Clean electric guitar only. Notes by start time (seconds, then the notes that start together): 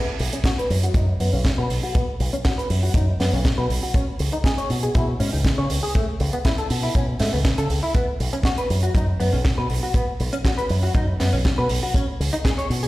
0.33 C#4
0.45 F#4
0.58 B4
0.83 F#4
0.95 D#4
1.20 B3
1.33 C#4
1.58 B4
1.83 F#4
1.95 B3
2.33 C#4
2.45 F#4
2.58 B4
2.83 F#4
2.95 D#4
3.20 B3
3.33 C#4
3.58 B4
3.83 F#4
3.95 C#4
4.33 D#4
4.45 G#4
4.58 C#5
4.83 G#4
4.95 E4
5.20 C#4
5.33 D#4
5.58 C#5
5.83 G#4
5.95 A3
6.33 B3
6.45 E4
6.58 A4
6.83 E4
6.95 C#4
7.20 A3
7.33 B3
7.58 A4
7.83 E4
7.95 B3
8.33 C#4
8.45 F#4
8.58 B4
8.83 F#4
8.95 D#4
9.20 B3
9.33 C#4
9.58 B4
9.83 F#4
9.95 B3
10.33 C#4
10.45 F#4
10.58 B4
10.83 F#4
10.95 D#4
11.20 B3
11.33 C#4
11.58 B4
11.83 F#4
11.95 C#4
12.33 D#4
12.45 G#4
12.58 C#5
12.83 G#4